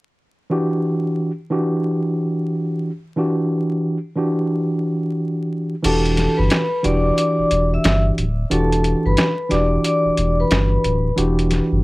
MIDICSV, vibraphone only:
0, 0, Header, 1, 2, 480
1, 0, Start_track
1, 0, Key_signature, 1, "minor"
1, 0, Tempo, 666667
1, 369, Time_signature, 4, 2, 24, 8
1, 8521, End_track
2, 0, Start_track
2, 0, Title_t, "Vibraphone"
2, 0, Program_c, 0, 11
2, 4210, Note_on_c, 0, 69, 93
2, 4215, Note_on_c, 0, 81, 68
2, 4575, Note_off_c, 0, 69, 0
2, 4578, Note_off_c, 0, 81, 0
2, 4586, Note_on_c, 0, 71, 73
2, 4591, Note_on_c, 0, 83, 56
2, 4902, Note_off_c, 0, 71, 0
2, 4905, Note_off_c, 0, 83, 0
2, 4929, Note_on_c, 0, 74, 77
2, 4935, Note_on_c, 0, 86, 60
2, 5145, Note_off_c, 0, 74, 0
2, 5148, Note_off_c, 0, 86, 0
2, 5165, Note_on_c, 0, 74, 84
2, 5171, Note_on_c, 0, 86, 68
2, 5533, Note_off_c, 0, 74, 0
2, 5536, Note_off_c, 0, 86, 0
2, 5571, Note_on_c, 0, 76, 78
2, 5576, Note_on_c, 0, 88, 62
2, 5781, Note_off_c, 0, 76, 0
2, 5784, Note_off_c, 0, 88, 0
2, 6131, Note_on_c, 0, 69, 83
2, 6138, Note_on_c, 0, 81, 69
2, 6496, Note_off_c, 0, 69, 0
2, 6500, Note_off_c, 0, 81, 0
2, 6518, Note_on_c, 0, 71, 72
2, 6524, Note_on_c, 0, 83, 59
2, 6829, Note_off_c, 0, 71, 0
2, 6832, Note_off_c, 0, 83, 0
2, 6843, Note_on_c, 0, 74, 69
2, 6849, Note_on_c, 0, 86, 57
2, 7061, Note_off_c, 0, 74, 0
2, 7065, Note_off_c, 0, 86, 0
2, 7096, Note_on_c, 0, 74, 83
2, 7103, Note_on_c, 0, 86, 61
2, 7459, Note_off_c, 0, 74, 0
2, 7462, Note_off_c, 0, 86, 0
2, 7488, Note_on_c, 0, 71, 76
2, 7493, Note_on_c, 0, 83, 56
2, 8024, Note_off_c, 0, 71, 0
2, 8027, Note_off_c, 0, 83, 0
2, 8521, End_track
0, 0, End_of_file